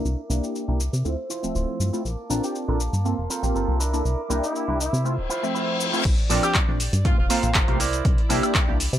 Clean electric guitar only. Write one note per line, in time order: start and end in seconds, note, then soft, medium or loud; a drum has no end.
0.00 0.20 D4 medium
0.00 0.20 E4 medium
0.00 0.21 A#4 loud
0.29 0.43 D4 loud
0.29 0.43 E4 loud
0.29 0.43 A#4 loud
0.55 muted clean electric guitar stroke soft
0.68 0.80 D4 medium
0.68 0.80 E4 medium
0.68 0.80 A#4 medium
0.93 muted clean electric guitar stroke soft
1.30 1.43 E4 loud
1.30 1.43 F4 loud
1.30 1.44 C5 loud
1.55 1.93 E4 medium
1.55 1.93 F4 medium
1.55 1.93 C5 medium
2.30 2.43 D4 loud
2.30 2.43 A4 loud
2.30 2.43 A#4 loud
2.55 muted clean electric guitar stroke soft
2.68 2.80 D4 medium
2.68 2.80 A4 medium
2.68 2.80 A#4 medium
2.93 muted clean electric guitar stroke soft
3.30 3.43 C4 loud
3.30 3.43 F4 medium
3.30 3.43 A4 loud
3.30 3.44 A#4 loud
3.54 3.80 C4 medium
3.54 3.79 F4 medium
3.54 3.80 A4 medium
3.54 3.79 A#4 medium
3.80 4.20 D4 medium
3.80 4.21 E4 medium
3.80 4.21 A#4 medium
4.29 4.43 D4 loud
4.29 4.43 E4 loud
4.29 4.43 A#4 loud
4.55 muted clean electric guitar stroke soft
4.68 4.80 D4 medium
4.68 4.80 E4 medium
4.68 4.80 A#4 medium
4.93 muted clean electric guitar stroke soft
5.29 5.43 E4 loud
5.29 5.43 F4 loud
5.29 5.43 C5 loud
5.55 5.93 E4 medium
5.55 5.93 F4 medium
5.55 5.93 C5 medium
6.29 6.43 F4 loud
6.29 6.43 A4 loud
6.29 6.43 A#4 loud
6.29 6.43 D5 loud
7.05 muted clean electric guitar stroke soft
7.18 muted clean electric guitar stroke medium
7.29 7.49 F4 loud
7.29 7.49 A4 medium
7.29 7.49 A#4 loud
7.29 7.49 C5 loud
7.68 7.79 F4 medium
7.68 7.80 A4 medium
7.68 7.79 A#4 medium
7.68 7.79 C5 loud
7.79 8.20 E4 loud
7.79 8.21 A#4 medium
7.79 8.21 C5 loud
7.79 8.21 D5 medium
8.29 8.43 E4 loud
8.29 8.43 A#4 medium
8.29 8.43 C5 loud
8.29 8.43 E5 loud
8.54 muted clean electric guitar stroke soft